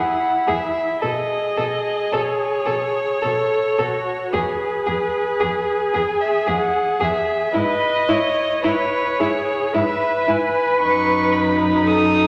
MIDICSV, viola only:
0, 0, Header, 1, 2, 480
1, 0, Start_track
1, 0, Key_signature, 4, "major"
1, 0, Tempo, 1100917
1, 451, Time_signature, 3, 2, 24, 8
1, 1890, Tempo, 1077199
1, 5426, End_track
2, 0, Start_track
2, 0, Title_t, "Viola"
2, 0, Program_c, 0, 41
2, 0, Note_on_c, 0, 64, 43
2, 452, Note_on_c, 0, 68, 53
2, 458, Note_off_c, 0, 64, 0
2, 1413, Note_off_c, 0, 68, 0
2, 1420, Note_on_c, 0, 69, 52
2, 1654, Note_on_c, 0, 66, 48
2, 1661, Note_off_c, 0, 69, 0
2, 1886, Note_on_c, 0, 68, 68
2, 1892, Note_off_c, 0, 66, 0
2, 3318, Note_off_c, 0, 68, 0
2, 3321, Note_on_c, 0, 71, 58
2, 3560, Note_on_c, 0, 73, 53
2, 3567, Note_off_c, 0, 71, 0
2, 3805, Note_off_c, 0, 73, 0
2, 3807, Note_on_c, 0, 71, 66
2, 4054, Note_on_c, 0, 68, 60
2, 4061, Note_off_c, 0, 71, 0
2, 4293, Note_on_c, 0, 71, 75
2, 4300, Note_off_c, 0, 68, 0
2, 5249, Note_off_c, 0, 71, 0
2, 5253, Note_on_c, 0, 69, 58
2, 5426, Note_off_c, 0, 69, 0
2, 5426, End_track
0, 0, End_of_file